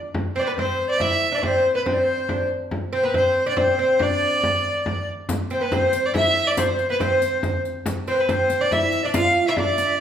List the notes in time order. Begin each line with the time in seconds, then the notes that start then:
0.14 frame drum
0.35 C4 C5 D5, frame drum
0.39 C4 C5
0.44 B3 B4
0.55 C4 C5, frame drum
0.79 frame drum
0.88 D5
0.98 E4 E5, frame drum
1.32 D4 D5 E5
1.38 D4 D5
1.43 C4 C5, frame drum
1.51 D5
1.57 C5
1.66 frame drum
1.75 B3 B4
1.85 C4 C5, frame drum
1.93 D5
1.99 C5
2.08 frame drum
2.29 D4, frame drum
2.71 frame drum
2.93 C4 C5, frame drum
3.03 B3 B4
3.14 C4 C5, frame drum
3.36 frame drum
3.46 D4 D5
3.57 C4 C5, frame drum
3.79 C4 C5
3.99 D4 D5, frame drum
4.22 frame drum
4.44 frame drum
4.65 frame drum
4.86 frame drum
5.08 frame drum
5.29 riq, frame drum
5.50 C4 C5, riq, frame drum
5.61 B3 B4
5.72 C4 C5, riq, frame drum
5.93 riq, frame drum
6.05 D5
6.14 E4 E5, riq, frame drum
6.37 riq
6.47 D5
6.57 C4 C5, riq, frame drum
6.79 riq, frame drum
6.90 B3 B4
7.00 C4 C5, riq, frame drum
7.22 riq, frame drum
7.43 riq, frame drum
7.65 riq
7.86 riq, frame drum
8.07 C4 C5, riq, frame drum
8.13 B4
8.18 B4 C5
8.29 C4 C5, riq, frame drum
8.50 riq, frame drum
8.61 D4 D5
8.71 E4 E5, riq, frame drum
8.92 riq
9.03 D4 D5
9.14 F4 F5, riq, frame drum
9.36 frame drum
9.46 E4 E5
9.56 D4 D5, frame drum
9.78 riq
9.86 E5
9.95 D5